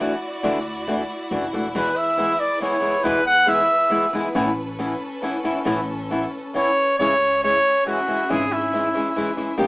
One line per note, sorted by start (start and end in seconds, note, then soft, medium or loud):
0.00 0.14 E3 medium
0.00 0.14 A3 medium
0.00 0.14 D4 medium
0.00 4.33 E4 medium
0.00 1.74 F#4 medium
0.00 0.14 F#4 medium
0.00 1.74 D5 loud
0.43 1.02 D2 medium
0.43 0.57 D3 medium
0.43 0.57 E3 medium
0.43 0.58 A3 medium
0.43 0.58 D4 medium
0.43 0.58 F#4 medium
0.88 1.01 E3 medium
0.88 1.01 A3 medium
0.88 1.01 D4 medium
0.88 1.02 F#4 medium
1.31 1.51 F#1 medium
1.31 1.45 E3 medium
1.31 1.45 A3 medium
1.31 1.45 D4 medium
1.31 1.45 F#4 medium
1.53 1.74 E1 medium
1.53 1.67 E3 medium
1.53 1.67 A3 soft
1.53 1.67 D4 medium
1.53 1.68 F#4 medium
1.75 1.89 E2 medium
1.75 2.33 E2 medium
1.75 1.89 B2 medium
1.75 1.89 E3 medium
1.75 1.89 G#3 medium
1.75 1.89 B3 medium
1.75 1.89 E4 medium
1.75 4.33 G#4 medium
1.75 6.94 B4 medium
1.75 1.98 B4 medium
1.97 2.41 E5 medium
2.17 2.32 E3 medium
2.17 2.32 G#3 medium
2.17 2.32 B3 medium
2.17 2.32 E4 medium
2.40 2.60 D5 medium
2.60 2.75 E3 medium
2.60 2.76 G#3 soft
2.60 2.76 B3 medium
2.60 2.76 E4 medium
2.60 3.05 C#5 medium
2.80 2.96 E3 soft
2.80 2.97 G#3 medium
2.80 2.97 B3 soft
2.80 2.97 E4 soft
3.04 3.19 E2 medium
3.04 3.63 E2 medium
3.04 3.19 B2 medium
3.04 3.19 E3 medium
3.04 3.19 G#3 medium
3.04 3.19 B3 medium
3.04 3.19 E4 medium
3.04 3.25 B4 loud
3.26 3.50 F#5 loud
3.46 3.61 E3 soft
3.46 3.61 G#3 medium
3.46 3.62 B3 medium
3.46 3.62 E4 medium
3.46 4.14 E5 medium
3.90 4.05 E3 medium
3.90 4.05 G#3 medium
3.90 4.05 B3 medium
3.90 4.05 E4 medium
4.13 4.27 E3 medium
4.13 4.28 G#3 medium
4.13 4.28 B3 medium
4.13 4.28 E4 medium
4.35 4.92 A1 medium
4.35 4.49 A2 medium
4.35 4.49 E3 medium
4.35 4.49 B3 medium
4.35 6.95 C#4 medium
4.35 4.49 C#4 loud
4.35 4.49 E4 medium
4.35 6.95 A4 medium
4.79 4.92 E3 medium
4.79 4.92 B3 medium
4.79 4.93 C#4 medium
4.79 4.93 E4 medium
5.22 5.36 E3 medium
5.22 5.36 B3 medium
5.22 5.36 C#4 medium
5.22 5.37 E4 medium
5.44 5.57 E3 medium
5.44 5.58 B3 medium
5.44 5.58 C#4 medium
5.44 5.58 E4 medium
5.65 6.23 A1 medium
5.65 5.79 A2 medium
5.65 5.79 E3 medium
5.65 5.79 B3 medium
5.65 5.80 C#4 medium
5.65 5.80 E4 medium
6.10 6.23 E3 medium
6.10 6.24 B3 medium
6.10 6.24 C#4 medium
6.10 6.24 E4 medium
6.54 6.68 E3 medium
6.54 6.68 B3 medium
6.54 6.68 C#4 medium
6.54 6.68 E4 medium
6.54 6.96 C#5 medium
6.98 7.56 C#2 medium
6.98 7.12 C#3 medium
6.98 7.13 E3 medium
6.98 7.13 G#3 medium
6.98 7.13 C#4 medium
6.98 9.59 C#4 medium
6.98 7.13 E4 medium
6.98 9.59 G#4 medium
6.98 7.39 C#5 loud
6.98 9.59 E5 medium
7.43 7.56 E3 soft
7.43 7.57 G#3 medium
7.43 7.57 C#4 medium
7.43 7.57 E4 medium
7.43 7.84 C#5 loud
7.87 8.00 E3 medium
7.87 8.00 G#3 soft
7.87 8.00 C#4 medium
7.87 8.01 E4 medium
7.87 8.32 F#4 medium
8.07 8.21 E3 soft
8.07 8.22 G#3 medium
8.07 8.22 C#4 medium
8.07 8.22 E4 medium
8.29 8.87 G#1 medium
8.29 8.43 C#3 medium
8.29 8.43 E3 medium
8.29 8.43 G#3 medium
8.29 8.44 C#4 medium
8.29 8.44 E4 medium
8.29 8.54 G#4 medium
8.53 9.39 E4 medium
8.73 8.87 E3 soft
8.73 8.87 G#3 medium
8.73 8.88 C#4 medium
8.73 8.88 E4 medium
8.94 9.08 E3 soft
8.94 9.08 G#3 medium
8.94 9.09 C#4 soft
8.94 9.09 E4 soft
9.16 9.30 E3 medium
9.16 9.30 G#3 medium
9.16 9.31 C#4 medium
9.16 9.31 E4 medium
9.37 9.51 E3 medium
9.37 9.51 G#3 medium
9.37 9.51 C#4 medium
9.37 9.51 E4 medium
9.58 9.67 D#2 medium
9.58 9.67 D#3 medium
9.58 9.67 A#3 medium
9.58 9.67 C#4 medium
9.58 9.67 G4 medium
9.63 9.67 D#4 medium
9.63 9.67 C#5 medium
9.63 9.67 G5 medium